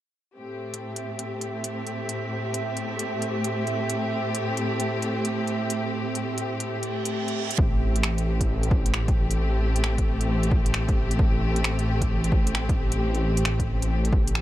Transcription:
0.36 7.54 A2 medium
0.36 7.54 A3 medium
0.36 7.54 C4 medium
0.36 7.54 G4 medium
0.36 7.60 E5 medium
0.74 closed hi-hat soft
0.96 closed hi-hat soft
1.19 closed hi-hat soft
1.41 closed hi-hat soft
1.64 closed hi-hat soft
1.87 closed hi-hat soft
2.09 closed hi-hat medium
2.54 closed hi-hat medium
2.77 closed hi-hat soft
2.99 closed hi-hat medium
3.22 closed hi-hat soft
3.44 closed hi-hat soft
3.67 closed hi-hat soft
3.90 closed hi-hat medium
4.35 closed hi-hat medium
4.57 closed hi-hat soft
4.80 closed hi-hat medium
5.02 closed hi-hat soft
5.25 closed hi-hat medium
5.47 closed hi-hat soft
5.70 closed hi-hat medium
6.15 closed hi-hat medium
6.38 closed hi-hat soft
6.60 closed hi-hat medium
6.68 reverse cymbal medium
6.83 closed hi-hat soft
7.05 closed hi-hat soft
7.28 closed hi-hat soft
7.51 closed hi-hat soft
7.58 14.41 A1 medium
7.58 14.41 A3 medium
7.58 14.41 C4 medium
7.58 14.41 G4 medium
7.58 kick loud
7.96 closed hi-hat medium
8.03 finger snap loud
8.18 closed hi-hat soft
8.41 kick medium
8.41 closed hi-hat medium
8.63 closed hi-hat soft
8.71 kick loud
8.86 closed hi-hat medium
8.94 finger snap loud
9.08 kick loud
9.08 closed hi-hat soft
9.31 closed hi-hat medium
9.76 closed hi-hat medium
9.84 finger snap loud
9.98 kick medium
9.98 closed hi-hat soft
10.21 closed hi-hat medium
10.43 closed hi-hat soft
10.51 kick loud
10.66 closed hi-hat medium
10.74 finger snap loud
10.89 kick loud
10.89 closed hi-hat soft
11.11 closed hi-hat medium
11.19 kick loud
11.56 closed hi-hat medium
11.64 finger snap loud
11.79 closed hi-hat soft
12.01 kick medium
12.01 closed hi-hat medium
12.24 closed hi-hat soft
12.32 kick loud
12.47 closed hi-hat medium
12.55 finger snap loud
12.69 kick loud
12.69 closed hi-hat soft
12.92 closed hi-hat medium
13.15 closed hi-hat soft
13.37 closed hi-hat soft
13.45 finger snap loud
13.59 kick medium
13.59 closed hi-hat soft
13.82 closed hi-hat medium
14.05 closed hi-hat soft
14.13 kick loud
14.27 closed hi-hat soft
14.35 finger snap loud

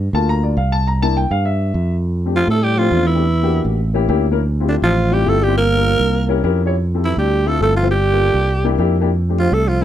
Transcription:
0.13 0.54 D2 loud
0.13 0.55 A3 medium
0.13 0.56 A#3 medium
0.13 0.56 F4 medium
0.13 0.28 A5 loud
0.29 0.43 A#5 loud
0.44 0.57 D5 medium
0.57 1.25 C2 loud
0.57 0.72 F5 medium
0.72 0.86 A5 loud
0.87 1.01 A#5 medium
1.02 1.21 A#3 medium
1.02 1.21 D4 medium
1.02 1.22 E4 medium
1.02 1.16 A5 loud
1.17 1.31 G5 medium
1.31 1.71 G2 loud
1.31 1.45 F5 loud
1.45 1.93 E5 medium
1.74 2.42 F2 medium
2.25 2.62 A3 medium
2.25 2.62 C4 medium
2.25 2.62 D4 medium
2.25 2.62 G4 medium
2.34 2.47 F3 medium
2.34 2.48 F4 medium
2.48 2.89 A2 medium
2.48 2.65 A3 medium
2.48 2.65 A4 medium
2.64 2.79 G3 medium
2.64 2.80 G4 medium
2.77 3.08 F3 medium
2.77 2.88 A3 medium
2.77 2.88 C4 medium
2.77 2.88 D4 medium
2.77 3.09 F4 medium
2.77 2.88 G4 medium
2.91 3.59 E2 medium
2.91 3.07 A3 medium
2.91 3.07 C4 medium
2.91 3.08 D4 medium
2.91 3.08 F4 medium
3.06 3.65 E3 medium
3.06 3.66 E4 medium
3.14 3.21 A3 medium
3.14 3.21 C4 medium
3.14 3.22 D4 medium
3.14 3.22 G4 medium
3.43 3.79 A#3 medium
3.43 3.79 D4 medium
3.43 3.79 F#4 medium
3.43 3.79 G4 medium
3.65 4.06 A1 medium
3.94 4.04 A#3 medium
3.94 4.05 C#4 medium
3.94 4.05 E4 medium
3.94 4.05 G4 loud
4.08 4.77 D2 loud
4.08 4.24 A#3 medium
4.08 4.24 C#4 medium
4.08 4.24 E4 medium
4.08 4.25 G4 loud
4.31 4.39 A#3 medium
4.31 4.39 C#4 medium
4.31 4.39 E4 medium
4.31 4.39 A#4 medium
4.60 4.96 C4 medium
4.60 4.97 E4 medium
4.60 4.97 F4 medium
4.60 4.97 G4 medium
4.68 4.75 D3 medium
4.68 4.75 D4 medium
4.82 5.23 A1 medium
4.82 5.14 F3 medium
4.82 5.15 F4 medium
5.11 5.29 G3 medium
5.11 5.22 C4 medium
5.11 5.22 E4 medium
5.11 5.22 F4 medium
5.11 5.22 G4 medium
5.11 5.31 G4 medium
5.26 5.94 G1 medium
5.26 5.43 A3 medium
5.26 5.42 C4 medium
5.26 5.42 E4 medium
5.26 5.42 F4 medium
5.26 5.42 G4 medium
5.26 5.45 A4 loud
5.42 5.56 G3 medium
5.42 5.57 G4 medium
5.48 5.56 C4 medium
5.48 5.56 E4 medium
5.48 5.56 F4 medium
5.48 5.56 G4 medium
5.57 6.41 A#3 medium
5.57 6.41 A#4 loud
5.77 6.14 A#3 medium
5.77 6.14 D4 medium
5.77 6.14 F4 medium
5.77 6.14 A#4 medium
6.00 6.41 C2 medium
6.29 6.39 C#4 medium
6.29 6.39 E4 medium
6.29 6.40 G4 medium
6.29 6.40 A#4 loud
6.43 7.12 F2 medium
6.43 6.59 C#4 medium
6.43 6.59 E4 medium
6.43 6.59 G4 medium
6.43 6.60 A#4 loud
6.65 6.73 C#4 medium
6.65 6.73 E4 medium
6.65 6.74 G4 medium
6.65 6.74 C#5 medium
6.94 7.31 C4 medium
6.94 7.31 E4 medium
6.94 7.31 G4 medium
6.94 7.32 A4 medium
7.04 7.17 E3 medium
7.04 7.18 E4 medium
7.17 7.58 D2 medium
7.17 7.49 G3 medium
7.17 7.49 G4 medium
7.46 7.61 A3 medium
7.46 7.57 C4 medium
7.46 7.57 E4 medium
7.46 7.57 F4 medium
7.46 7.57 A4 medium
7.46 7.62 A4 loud
7.61 8.29 G1 medium
7.61 7.76 A3 medium
7.61 7.77 C4 medium
7.61 7.77 E4 medium
7.61 7.77 F4 medium
7.61 7.77 A4 medium
7.61 7.76 A4 loud
7.77 7.90 F3 medium
7.77 7.90 F4 medium
7.83 7.91 C4 medium
7.83 7.91 E4 medium
7.83 7.91 F4 medium
7.83 7.91 C5 medium
7.91 8.75 G3 medium
7.91 8.75 G4 loud
8.12 8.49 A#3 medium
8.12 8.49 D4 medium
8.12 8.49 F4 medium
8.12 8.49 A4 medium
8.34 8.76 C2 medium
8.64 8.75 A#3 medium
8.64 8.75 D4 medium
8.64 8.75 E4 medium
8.64 8.75 G4 loud
8.78 9.47 F2 loud
8.78 8.94 A#3 medium
8.78 8.94 D4 medium
8.78 8.95 E4 medium
8.78 8.95 G4 loud
9.00 9.08 A#3 medium
9.00 9.08 D4 medium
9.00 9.09 E4 medium
9.00 9.09 G4 medium
9.29 9.66 A3 medium
9.29 9.66 C4 medium
9.29 9.66 D4 medium
9.29 9.66 G4 medium
9.39 9.55 F3 medium
9.39 9.55 F4 medium
9.52 9.85 C2 medium
9.52 9.70 A3 medium
9.52 9.70 A4 medium
9.68 9.84 F3 medium
9.68 9.84 F4 medium
9.81 9.85 A3 medium
9.81 9.85 C4 medium

